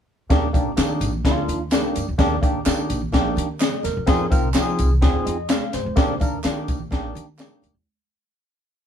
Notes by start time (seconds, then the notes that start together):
0.30 D#2 A#3 D4 D#4 G4, kick, snare, closed hi-hat, tambourine, muted conga
0.53 A#1 A#3 D4 D#4 G4, kick, closed hi-hat, tambourine, muted conga
0.77 D#3 A#3 D4 D#4 G4, snare, clap, closed hi-hat, tambourine, high conga
1.01 A#1, closed hi-hat, tambourine
1.13 low conga
1.24 D2 A#3 D4 D#4 E4, kick, snare, closed hi-hat, tambourine, muted conga
1.31 F4
1.48 D#2, closed hi-hat, tambourine, muted conga
1.71 A#3 D4 D#4 G4, snare, clap, closed hi-hat, tambourine, high conga
1.95 G2, closed hi-hat, tambourine, high conga
2.08 E2, high conga
2.18 D#2 A#3 D4 D#4 G4, kick, snare, closed hi-hat, tambourine, muted conga
2.42 D#2 A#3 D4 D#4 G4, kick, closed hi-hat, tambourine, muted conga
2.65 D#3 A#3 D4 D#4 G4, snare, clap, closed hi-hat, tambourine, high conga
2.90 A#1, closed hi-hat, tambourine
3.02 low conga
3.12 A#1 A#3 D4 D#4 G4, kick, snare, closed hi-hat, tambourine, muted conga
3.36 D#3, closed hi-hat, tambourine, muted conga, low conga
3.60 D#5, snare, clap, closed hi-hat, tambourine, high conga
3.83 D#2 A#4, snare, closed hi-hat, tambourine, high conga
3.96 F#2, high conga
4.06 F2 C4 D#4 F4 G#4, kick, snare, closed hi-hat, tambourine, muted conga
4.30 C2 C4 D#4 F4 A#4, kick, closed hi-hat, tambourine, muted conga
4.54 F3 C4 D#4 F4 G4, snare, clap, closed hi-hat, tambourine, high conga
4.62 G#4
4.79 C2, closed hi-hat, tambourine
4.91 low conga
5.01 D#2 C4 D#4 F4 G#4, kick, snare, closed hi-hat, tambourine, muted conga
5.25 F2 D#5, closed hi-hat, muted conga
5.49 F5, snare, clap, closed hi-hat, tambourine, high conga
5.73 G#2 C5, snare, closed hi-hat, tambourine, high conga
5.85 E2, high conga
5.96 D#2 A#3 D4 D#4 G4, kick, snare, closed hi-hat, tambourine, muted conga
6.20 D#2 A#3 D4 D#4 A#4, kick, closed hi-hat, tambourine, muted conga
6.43 D#3 A#3 D4 D#4 F4, snare, clap, closed hi-hat, tambourine, high conga
6.51 G4
6.68 A#1, kick, closed hi-hat, tambourine
6.79 low conga
6.91 A#1 A#3 D4 D#4 G4, kick, snare, closed hi-hat, tambourine, muted conga
7.15 D#3, closed hi-hat, tambourine, muted conga, low conga
7.38 A#3 D4 D#4 G4, snare, clap, closed hi-hat, tambourine, high conga
7.62 D#2, closed hi-hat, tambourine, high conga
7.75 E2, high conga